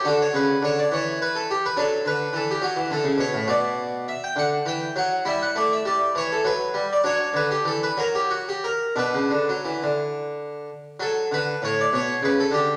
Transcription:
<<
  \new Staff \with { instrumentName = "Harpsichord" } { \time 6/8 \key d \major \tempo 4. = 67 << { a'16 cis''16 b'8 cis''16 d''16 cis''8 b'16 a'16 g'16 b'16 | a'8 b'8 a'16 g'16 fis'8 a'8 cis''8 | \key b \minor d''4 e''16 g''16 fis''8 g''8 fis''8 | e''16 fis''16 d''16 e''16 d''8 cis''16 a'16 b'8. d''16 |
cis''8 b'16 g'16 a'16 b'16 ais'16 g'16 fis'16 g'16 ais'8 | b'2~ b'8 r8 | \key d \major a'8 b'8 cis''16 d''16 cis''8 b'16 a'16 g'8 | } \\ { fis'4. r4. | d'2. | fis'2. | e'4. r4. |
d'4. r4. | d'2. | r2. | } >> }
  \new Staff \with { instrumentName = "Harpsichord" } { \clef bass \time 6/8 \key d \major d8 cis8 d8 e4. | fis8 d8 e8 fis16 e16 d16 cis16 b,16 a,16 | \key b \minor b,4. d8 e8 fis8 | g8 a8 g8 e8 fis8 g8 |
fis8 d8 e8 fis4. | b,16 cis16 d16 fis16 e16 d4.~ d16 | \key d \major fis8 d8 a,8 b,8 cis8 d8 | }
>>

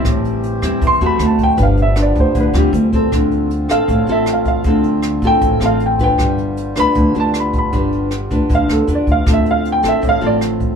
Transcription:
<<
  \new Staff \with { instrumentName = "Grand piano" } { \time 4/4 \key d \dorian \tempo 4 = 156 r2 c'''8 b''8 a''8 g''8 | f''8 e''8 d''8 c''8 b'8 g'8 r4 | r4. f''4 e''8 f''8 f''8~ | f''8 r4 g''4 f''8 g''8 g''8~ |
g''8 r4 b''4 a''8 b''8 b''8~ | b''8 r4. f''8 a'8 d''8 f''8 | e''8 f''8 g''8 e''8 f''8 d''8 r4 | }
  \new Staff \with { instrumentName = "Nylon-string guitar" } { \time 4/4 \key d \dorian << { <g c' e'>4. <g c' e'>4 <a c' fis'>4. | <d' f' b'>8 r8 <d' f' b'>4. <g c' f'>4 <c' f' a'>8~ | <c' f' a'>4 r8 <c' f' a'>4 <c' f' a'>4. | <c' f' a'>4. <c' f' a'>4 <c' f' a'>4 <d' f' b'>8~ |
<d' f' b'>4. <d' f' b'>4 <d' f' b'>4. | <d' f' b'>4 r8 <d' f' b'>4. <d' f' b'>4 | <c' f' a'>4. <c' f' a'>4 <c' f' a'>4. | } \\ { a,2 e4 r4 | g2 d4 r4 | d2 a,2 | d2 a,2 |
g2 d2 | g2 d2 | d2 a,2 | } >> }
  \new Staff \with { instrumentName = "Harmonium" } { \time 4/4 \key d \dorian << { g'2. fis'4 | f1 | f'1~ | f'1~ |
f'1~ | f'1~ | f'1 | } \\ { c''1 | b2. c'4 | c'1~ | c'1 |
b1~ | b1 | c'1 | } >> }
  \new Staff \with { instrumentName = "Harmonium" } { \clef bass \time 4/4 \key d \dorian << { a1 | g1 | a1~ | a1 |
g1~ | g1 | a1 | } \\ { e2. d4~ | d2. e4 | d1~ | d1~ |
d1~ | d1 | d1 | } >> }
  \new Staff \with { instrumentName = "Upright bass" } { \clef bass \time 4/4 \key d \dorian a,,4. e,16 r16 e,8 e,8 d,4 | g,,4. d,16 r16 d,8 d,8 d,4 | d,4. a,,16 r16 a,,8 a,,4. | d,4. a,,16 r16 a,,8 a,,4. |
g,,4. d,16 r16 d,8 d,4. | g,,4. d,16 r16 d,8 d,8 e,8 d,8 | d,4. a,,16 r16 a,,8 a,,4. | }
  \new DrumStaff \with { instrumentName = "Drums" } \drummode { \time 4/4 <hh bd ss>8 hh8 hh8 <hh ss>8 <hh bd>8 hh8 <hh ss>8 <hh bd>8 | <hh bd>8 hh8 <hh ss>8 <hh bd>8 <hh bd>8 <hh ss>8 hh8 <hh bd>8 | <hh bd ss>8 hh8 hh8 <hh ss>8 <hh bd>8 hh8 <hh ss>8 <hh bd>8 | <hh bd>8 hh8 <hh ss>8 <hh bd>8 <hh bd>8 <hh ss>8 hh8 <hh bd>8 |
<hh bd ss>8 hh8 hh8 <hh ss>8 <hh bd>8 hh8 <hh ss>8 <hh bd>8 | <hh bd>8 hh8 <hh ss>8 <hh bd>8 <hh bd>8 <hh ss>8 hh8 <hh bd>8 | <hh bd ss>8 hh8 hh8 <hh ss>8 <hh bd>8 hh8 <hh ss>8 <hh bd>8 | }
>>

